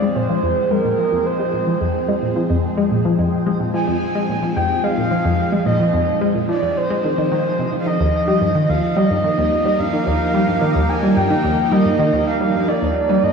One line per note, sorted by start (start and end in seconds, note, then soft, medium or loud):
0.00 13.33 F3 medium
0.00 7.87 G#3 medium
0.00 0.10 G#3 loud
0.00 9.43 C4 medium
0.00 13.33 D#4 medium
0.00 7.87 G#4 medium
0.00 7.87 C5 medium
0.00 0.17 D5 loud
0.16 0.24 A#2 medium
0.16 0.73 C5 medium
0.30 0.38 F3 loud
0.43 0.52 F2 medium
0.71 0.79 G#3 medium
0.71 1.28 A#4 medium
0.85 0.93 A#2 medium
0.99 1.07 F3 loud
1.12 1.20 F2 medium
1.26 2.36 C5 medium
1.40 1.48 G#3 loud
1.54 1.62 A#2 medium
1.67 1.75 F3 loud
1.81 1.89 F2 loud
2.09 2.17 G#3 loud
2.22 2.30 A#2 medium
2.36 2.44 F3 loud
2.50 2.58 F2 loud
2.77 2.85 G#3 loud
2.91 2.99 A#2 medium
3.05 3.13 F3 loud
3.19 3.27 F2 loud
3.46 3.54 G#3 loud
3.60 3.68 A#2 medium
3.74 3.82 F3 medium
3.74 4.58 G#5 loud
3.88 3.96 F2 loud
4.15 4.23 G#3 loud
4.29 4.37 A#2 medium
4.43 4.51 F3 loud
4.56 4.64 F2 loud
4.56 4.85 G5 loud
4.84 4.92 G#3 loud
4.84 5.66 F5 loud
4.98 5.06 A#2 medium
5.11 5.19 F3 medium
5.25 5.33 F2 medium
5.52 5.61 G#3 medium
5.66 5.74 A#2 medium
5.66 6.18 D#5 medium
5.80 5.88 F3 loud
5.94 6.02 F2 medium
6.21 6.29 G#3 loud
6.35 6.43 A#2 medium
6.49 6.57 F3 medium
6.49 6.78 D5 medium
6.63 6.71 F2 medium
6.77 7.31 C5 medium
6.90 6.98 G#3 loud
7.04 7.09 D#3 medium
7.18 7.30 D#3 loud
7.32 7.44 D#3 medium
7.32 7.70 C5 medium
7.59 7.64 C3 medium
7.73 7.81 F3 medium
7.80 7.89 F5 medium
7.86 7.95 D#3 medium
7.86 8.71 D#5 loud
8.00 8.08 D#2 loud
8.20 13.33 A#3 medium
8.20 12.59 D#4 medium
8.28 8.36 G3 loud
8.41 8.50 G2 medium
8.55 8.63 D#3 loud
8.69 8.77 D#2 loud
8.69 12.73 G4 medium
8.69 13.15 A#4 medium
8.69 8.98 F5 medium
8.97 9.05 G3 loud
8.97 9.81 D#5 loud
9.10 9.19 G2 medium
9.24 9.32 D#3 loud
9.38 9.46 D#2 loud
9.65 9.74 G3 loud
9.79 9.87 G2 medium
9.79 10.91 F5 loud
9.93 10.01 D#3 loud
10.07 10.15 D#2 loud
10.34 10.42 G3 loud
10.48 10.56 G2 medium
10.62 10.70 D#3 loud
10.75 10.84 D#2 loud
10.89 11.18 G#5 loud
11.03 11.11 G3 loud
11.17 11.25 G2 medium
11.17 11.73 G5 loud
11.31 11.39 D#3 loud
11.44 11.52 D#2 loud
11.72 11.80 G3 loud
11.72 12.26 D#5 loud
11.86 11.94 G2 medium
11.99 12.07 D#3 loud
12.13 12.21 D#2 loud
12.27 12.70 F5 loud
12.41 12.49 G3 loud
12.54 12.63 G2 medium
12.54 13.33 F4 medium
12.68 12.76 D#3 loud
12.68 13.25 D5 medium
12.82 12.90 D#2 loud
12.98 13.33 C5 medium
13.09 13.17 G3 loud
13.23 13.31 G2 medium
13.23 13.33 D#5 medium